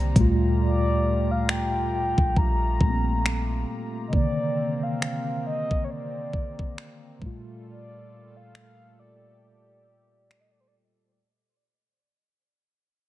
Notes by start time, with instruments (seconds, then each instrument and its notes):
Already playing: 808-style bass C2, tine electric piano C3 D3 D#3 A#3, analog synth pad C4 G4 C5 A#5, soft synth lead D5
0.13 808-style bass D2, tine electric piano A2 G3, analog synth pad A3 F4 G4, kick, closed hi-hat
0.18 tine electric piano A#2 A3 F4
0.62 soft synth lead D5
1.31 soft synth lead F5
1.49 soft synth lead G5, finger snap
2.18 808-style bass A#1, kick
2.37 808-style bass A#1, soft synth lead A#5, kick
2.80 808-style bass A#1, tine electric piano A#2 G3 A3 A#3, kick
2.90 tine electric piano C4
3.26 finger snap
4.08 tine electric piano C3, soft synth lead D#5
4.12 analog synth pad C3 A#3 C4, tine electric piano D#3 A#3, soft synth lead D5, kick
4.17 tine electric piano D3
4.83 soft synth lead F5
5.02 finger snap
5.47 soft synth lead D#5
5.71 kick
5.84 soft synth lead C#5
5.90 soft synth lead D5
6.33 kick
6.59 kick
6.78 finger snap
7.19 tine electric piano A2 G3, analog synth pad A#2 G3 A3 F4 A4, kick
7.24 tine electric piano A#2 A3 F4
7.67 soft synth lead D5
8.37 soft synth lead F5
8.55 soft synth lead F5, finger snap
8.99 analog synth pad G4, soft synth lead D5
10.31 finger snap
10.41 soft synth lead D#5
10.51 soft synth lead D5
10.60 soft synth lead C5
10.68 soft synth lead D5